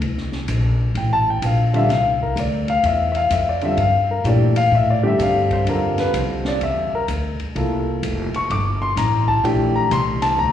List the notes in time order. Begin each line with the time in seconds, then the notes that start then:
0.01 C2, ride
0.18 snare
0.32 snare
0.48 A#1, hi-hat pedal, ride
0.95 A1 G5, ride
1.13 A5
1.30 G5
1.42 A#1 F5, hi-hat pedal, ride
1.74 D3 G3 C4 F4 E5, ride
1.89 C2 F5, snare, ride
2.21 A#4, kick
2.36 D2 D5, hi-hat pedal, ride
2.68 F5, ride
2.83 E2 E5, ride
3.12 E5, ride
3.16 F5
3.30 F2 E5, hi-hat pedal, ride
3.49 D5
3.61 D3 G3 C4 F4 E5, ride
3.77 G2 F5, ride
4.11 A#4
4.24 A#2 E3 A3 D4 G4 D5, hi-hat pedal, ride
4.56 F5, ride
4.71 A2 E5
4.90 D5
5.03 D3 G3 C4 G4 E5
5.19 G2 F5, hi-hat pedal, ride
5.50 C5, kick, ride
5.67 F2 D3 G3 C4 F4 A#4, ride
5.98 B4, snare, ride
6.14 C2 C5, hi-hat pedal, ride
6.45 D5, snare
6.61 E2 E5, ride
6.93 A#4, muted upright bass stroke
7.08 D2, hi-hat pedal, ride
7.40 muted upright bass stroke, ride
7.56 C2 F3 A#3 E4 A4, ride
8.03 F1, hi-hat pedal, ride
8.34 C#6, muted upright bass stroke, ride
8.50 G1 D6, ride
8.82 C6
8.97 A1 A#5, snare, hi-hat pedal, ride
9.28 A5, kick
9.44 A#1 E3 A3 D4 G4 G5, ride
9.76 A#5
9.91 C2 C6, hi-hat pedal, ride
10.22 A5, snare, ride
10.38 D2 A#5